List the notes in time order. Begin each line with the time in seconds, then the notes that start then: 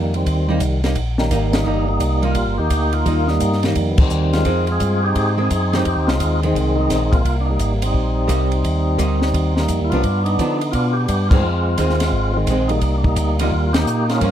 Already playing: F2 D#3 G3 A#3
0.14 D#3 G3 C4, ride
0.26 D#2, kick, ride
0.49 G3 A#3 D#4
0.60 C2, kick, hi-hat pedal, ride
0.84 G3 A#3 D#4, snare, ride
0.95 A#1, kick, ride
1.18 D#3 G3 A#3, snare
1.31 G#1 G3 A#3 D#4, kick, hi-hat pedal, ride
1.53 G3 A#3 D#4, snare, ride
1.65 G1 G3 A#3 D#4
1.88 G3 A#3 D#4
2.00 C2, kick, hi-hat pedal, ride
2.22 G3 A#3 D#4 F4, ride
2.35 A#1, kick, ride
2.46 G1
2.58 D#2 A#3 D#4 G4
2.70 D2, kick, hi-hat pedal, ride
2.93 A#3 F4, ride
3.06 D#2 G3 A#3 D#4, kick, ride
3.27 G3 A#3 D#4, snare
3.40 G2, kick, hi-hat pedal, ride
3.53 snare
3.63 D#3 G3 A#3 D#4, snare, ride
3.75 F2, kick, ride
3.92 B3
3.98 F2 D#3 G3 C4, kick, crash
4.10 D#2, hi-hat pedal
4.33 G#3 C4 F4, snare, ride
4.45 F2 D#3 G#3 C4, kick, ride
4.67 F4, ride
4.71 C4 G#4
4.80 G2, kick, hi-hat pedal, ride
5.03 C4 D#4 G4
5.15 G#2, kick, ride
5.37 D#3 G#3 C4 G#4
5.42 C4 D#4
5.50 F#2, kick, hi-hat pedal, ride
5.73 D#3 G#3 C4 D#4 G4, snare, ride
5.77 C4
5.85 F2, kick, ride
5.96 D#2
6.07 C2 G#3 F4, snare
6.12 C4
6.20 D#2, kick, hi-hat pedal, ride
6.43 D#3 G#3 C4, ride
6.55 C2, kick, ride
6.75 G#3 C4 D#4
6.90 A#1, kick, snare, hi-hat pedal, ride
7.05 D#4
7.12 A#3 F4, kick, ride
7.24 C2, kick, ride
7.40 D4
7.46 D#4
7.51 G3 A#3
7.59 G#1, kick, hi-hat pedal, ride
7.76 A#3
7.82 C4 D#4, ride
7.86 G3
7.94 A#1, kick
8.28 C2 G3 A#3 D#4, kick, hi-hat pedal, ride
8.52 ride
8.63 D#2, kick, ride
8.98 D2 G3 A#3 D#4, kick, hi-hat pedal, ride
9.22 snare
9.34 D#2, kick, ride
9.56 G3 A#3 D#4, snare
9.68 F2, kick, hi-hat pedal, ride
9.80 D#2
9.84 E4
9.90 C2 F3 B3 D4 F4, ride
10.03 G2, kick, ride
10.24 B3 D#4, ride
10.38 D3 F3 B3 D4, kick, hi-hat pedal, ride
10.59 D#4, ride
10.72 B2 B3 D4 F4, kick, ride
10.93 G4
11.06 G2 G4, kick, hi-hat pedal, ride
11.29 D#3 G#3 C4 F4, kick, crash
11.34 G#3 C4
11.42 F2
11.78 D#2 D#3 G#3 C4, kick, hi-hat pedal, ride
11.89 snare
12.00 snare, ride
12.12 G#1, kick
12.34 D#3 G#3 C4
12.47 A#1 D#3 G#3, kick, hi-hat pedal, ride
12.51 C4
12.68 G3 A#3 D#4, ride
12.81 C2, kick, ride
12.98 D4
13.04 G3 A#3 D#4, kick
13.16 D2, kick, hi-hat pedal, ride
13.39 G3 A#3 D#4 F4, ride
13.51 D#2, kick
13.66 F4
13.73 A#3 D#4 G4, snare, ride
13.87 A#2, hi-hat pedal
14.09 A#3 C#4 F4, snare, ride
14.21 G2 F3 A#3 C#4, kick, ride